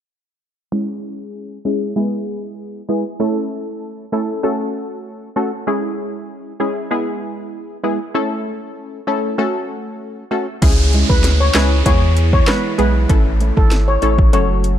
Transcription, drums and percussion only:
10.62 kick loud
10.62 closed hi-hat medium
10.62 crash medium
10.93 closed hi-hat soft
11.10 kick medium
11.24 snare medium
11.24 closed hi-hat medium
11.55 snare loud
11.55 clap loud
11.55 closed hi-hat soft
11.86 kick medium
11.86 closed hi-hat medium
12.17 closed hi-hat medium
12.33 kick medium
12.47 cross-stick medium
12.47 snare loud
12.47 clap medium
12.47 closed hi-hat medium
12.79 closed hi-hat soft
13.09 kick loud
13.09 closed hi-hat medium
13.40 closed hi-hat soft
13.57 kick medium
13.71 snare medium
13.71 closed hi-hat medium
14.02 closed hi-hat soft
14.18 kick loud
14.33 closed hi-hat medium
14.64 closed hi-hat medium

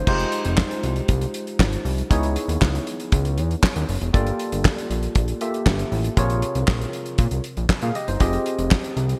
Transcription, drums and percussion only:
0.07 kick loud
0.07 crash loud
0.19 closed hi-hat medium
0.32 closed hi-hat medium
0.45 closed hi-hat medium
0.58 kick loud
0.58 snare loud
0.58 clap loud
0.71 closed hi-hat medium
0.83 closed hi-hat medium
0.96 closed hi-hat medium
1.08 kick loud
1.08 closed hi-hat loud
1.21 closed hi-hat medium
1.34 closed hi-hat medium
1.47 closed hi-hat soft
1.59 kick loud
1.59 snare loud
1.59 clap loud
1.73 closed hi-hat medium
1.85 open hi-hat medium
1.98 closed hi-hat medium
2.11 kick loud
2.11 closed hi-hat loud
2.23 closed hi-hat soft
2.36 closed hi-hat medium
2.49 closed hi-hat medium
2.62 kick loud
2.62 snare loud
2.62 clap loud
2.75 closed hi-hat medium
2.87 closed hi-hat medium
3.00 closed hi-hat medium
3.12 kick loud
3.12 closed hi-hat loud
3.25 closed hi-hat medium
3.38 closed hi-hat medium
3.51 closed hi-hat soft
3.63 kick loud
3.63 snare loud
3.63 clap loud
3.76 closed hi-hat medium
3.89 open hi-hat medium
4.01 closed hi-hat medium
4.14 kick loud
4.14 closed hi-hat loud
4.27 closed hi-hat medium
4.39 closed hi-hat medium
4.52 closed hi-hat medium
4.65 kick loud
4.65 snare loud
4.65 clap loud
4.78 closed hi-hat medium
4.91 closed hi-hat medium
5.03 closed hi-hat medium
5.15 kick loud
5.15 closed hi-hat loud
5.28 closed hi-hat medium
5.41 closed hi-hat medium
5.54 closed hi-hat soft
5.66 kick loud
5.66 snare loud
5.66 clap loud
5.79 closed hi-hat medium
5.92 open hi-hat medium
6.04 closed hi-hat medium
6.17 kick loud
6.17 closed hi-hat loud
6.30 closed hi-hat soft
6.42 closed hi-hat medium
6.55 closed hi-hat medium
6.68 kick loud
6.68 snare loud
6.68 clap loud
6.81 closed hi-hat medium
6.93 closed hi-hat medium
7.06 closed hi-hat soft
7.18 kick loud
7.18 closed hi-hat loud
7.31 closed hi-hat medium
7.44 closed hi-hat medium
7.57 closed hi-hat soft
7.69 kick loud
7.69 snare loud
7.69 clap loud
7.82 closed hi-hat medium
7.95 closed hi-hat medium
8.08 closed hi-hat medium
8.20 kick loud
8.20 closed hi-hat loud
8.33 closed hi-hat medium
8.46 closed hi-hat medium
8.59 closed hi-hat medium
8.71 kick loud
8.71 snare loud
8.71 clap loud
8.84 closed hi-hat medium
8.97 closed hi-hat medium
9.09 closed hi-hat medium

